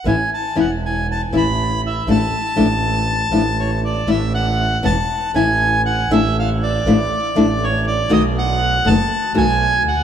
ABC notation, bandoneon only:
X:1
M:4/4
L:1/8
Q:1/4=119
K:A
V:1 name="Bandoneon"
g a f g a b2 e | a6 c d | e f2 a2 g2 f | e =f d4 c d |
^d f2 a2 g2 f |]